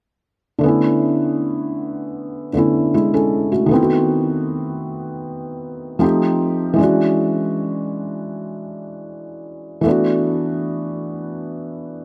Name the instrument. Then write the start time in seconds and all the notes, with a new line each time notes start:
felt piano
0.59 D3 A3
0.64 B3 C#4
0.68 E4
2.53 D3 A3 B3 C#4
2.58 E4
2.94 G#3 E4
3.14 C#4 A4
3.52 A3 F#4
3.66 D#3 A3
3.71 B3 C4
3.76 E4
3.82 F#4
5.99 F3 A3 C4 D#4
6.04 G4
6.74 E3 G#3
6.78 C#4 D4
6.83 F#4
9.81 E3 A3
9.86 B3 D4
9.91 F#4